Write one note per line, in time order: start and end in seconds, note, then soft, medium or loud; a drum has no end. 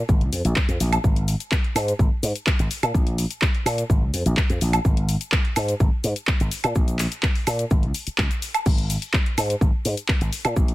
0.09 0.22 G#1 medium
0.09 kick loud
0.09 shaker soft
0.21 0.29 C#2 loud
0.21 closed hi-hat soft
0.33 0.41 F2 medium
0.33 open hi-hat loud
0.33 shaker medium
0.45 0.53 A#1 medium
0.45 closed hi-hat medium
0.45 shaker soft
0.56 kick loud
0.56 clap loud
0.56 shaker soft
0.68 0.77 F2 medium
0.68 closed hi-hat soft
0.68 shaker soft
0.80 0.97 A#1 medium
0.80 open hi-hat loud
0.80 shaker medium
0.93 closed hi-hat medium
0.93 high woodblock medium
0.93 shaker soft
1.04 1.34 G#1 loud
1.04 kick loud
1.04 shaker soft
1.16 closed hi-hat medium
1.28 open hi-hat loud
1.28 shaker medium
1.40 closed hi-hat medium
1.40 shaker soft
1.52 kick loud
1.52 clap loud
1.52 shaker soft
1.64 closed hi-hat soft
1.75 1.92 G#2 medium
1.75 open hi-hat loud
1.75 high woodblock medium
1.75 shaker medium
1.88 closed hi-hat medium
1.88 shaker soft
1.99 2.08 G#1 loud
1.99 kick loud
1.99 shaker soft
2.23 2.31 G#2 loud
2.23 open hi-hat loud
2.23 shaker medium
2.36 closed hi-hat medium
2.36 shaker soft
2.47 kick loud
2.47 clap loud
2.47 shaker soft
2.59 2.67 G#1 medium
2.59 closed hi-hat medium
2.59 shaker soft
2.71 open hi-hat loud
2.71 shaker medium
2.83 2.91 A#2 loud
2.83 closed hi-hat medium
2.83 high woodblock medium
2.83 shaker soft
2.94 3.24 A#1 loud
2.94 kick loud
2.94 shaker medium
3.07 closed hi-hat medium
3.18 open hi-hat loud
3.18 shaker medium
3.31 closed hi-hat medium
3.31 shaker soft
3.42 kick loud
3.42 clap loud
3.42 shaker soft
3.55 closed hi-hat soft
3.66 3.82 A#2 medium
3.66 open hi-hat loud
3.66 high woodblock medium
3.66 shaker medium
3.78 closed hi-hat medium
3.78 shaker soft
3.90 4.03 G#1 medium
3.90 kick loud
3.90 shaker soft
4.02 4.10 C#2 medium
4.14 4.22 F2 medium
4.14 open hi-hat loud
4.14 shaker medium
4.26 4.34 A#1 loud
4.26 closed hi-hat medium
4.26 shaker soft
4.37 kick loud
4.37 clap loud
4.37 shaker soft
4.50 4.58 F2 medium
4.50 closed hi-hat soft
4.50 shaker soft
4.61 4.78 A#1 medium
4.61 open hi-hat loud
4.61 shaker medium
4.73 closed hi-hat medium
4.73 high woodblock medium
4.73 shaker soft
4.85 5.15 G#1 loud
4.85 kick loud
4.85 shaker soft
4.97 closed hi-hat medium
5.09 open hi-hat loud
5.09 shaker medium
5.21 closed hi-hat medium
5.21 shaker soft
5.32 kick loud
5.32 clap loud
5.32 shaker medium
5.45 closed hi-hat soft
5.56 5.73 G#2 medium
5.56 open hi-hat loud
5.56 high woodblock medium
5.56 shaker medium
5.68 closed hi-hat medium
5.68 shaker soft
5.80 5.89 G#1 loud
5.80 kick loud
5.80 shaker soft
6.04 6.12 G#2 loud
6.04 open hi-hat loud
6.04 shaker medium
6.16 closed hi-hat medium
6.16 shaker soft
6.27 kick loud
6.27 clap loud
6.27 shaker soft
6.40 6.48 G#1 medium
6.40 closed hi-hat medium
6.40 shaker soft
6.51 open hi-hat loud
6.51 shaker medium
6.64 6.72 A#2 loud
6.64 closed hi-hat medium
6.64 high woodblock medium
6.64 shaker soft
6.75 7.05 A#1 loud
6.75 kick loud
6.75 shaker soft
6.88 closed hi-hat medium
6.88 shaker soft
6.99 clap medium
6.99 open hi-hat loud
6.99 shaker medium
7.12 closed hi-hat medium
7.12 shaker soft
7.23 kick loud
7.23 clap loud
7.23 shaker soft
7.35 open hi-hat medium
7.47 7.64 A#2 medium
7.47 open hi-hat loud
7.47 high woodblock medium
7.47 shaker medium
7.59 closed hi-hat medium
7.59 shaker soft
7.71 7.85 G#1 medium
7.71 kick loud
7.71 shaker soft
7.83 7.91 C#2 loud
7.83 closed hi-hat soft
7.94 open hi-hat loud
7.94 shaker medium
8.07 muted slap bass stroke soft
8.07 closed hi-hat medium
8.07 shaker soft
8.18 8.27 C#2 medium
8.18 kick loud
8.18 clap loud
8.18 shaker soft
8.31 closed hi-hat medium
8.31 shaker soft
8.42 open hi-hat loud
8.42 shaker medium
8.54 closed hi-hat medium
8.54 high woodblock medium
8.54 shaker soft
8.66 8.96 G#1 loud
8.66 kick loud
8.66 crash medium
8.66 shaker soft
8.78 closed hi-hat medium
8.90 open hi-hat loud
8.90 shaker medium
9.02 closed hi-hat medium
9.02 shaker soft
9.14 kick loud
9.14 clap loud
9.14 shaker soft
9.26 closed hi-hat soft
9.38 9.54 G#2 medium
9.38 open hi-hat loud
9.38 high woodblock medium
9.38 shaker medium
9.50 closed hi-hat medium
9.50 shaker soft
9.61 9.70 G#1 loud
9.61 kick loud
9.61 shaker soft
9.85 9.94 G#2 loud
9.85 open hi-hat loud
9.85 shaker medium
9.97 closed hi-hat medium
9.97 shaker soft
10.08 kick loud
10.08 clap loud
10.08 shaker soft
10.21 10.29 G#1 medium
10.21 closed hi-hat medium
10.21 shaker soft
10.33 open hi-hat loud
10.33 shaker medium
10.45 10.53 A#2 loud
10.45 closed hi-hat medium
10.45 high woodblock medium
10.45 shaker soft
10.56 10.75 A#1 loud
10.56 kick loud
10.56 shaker soft
10.68 closed hi-hat medium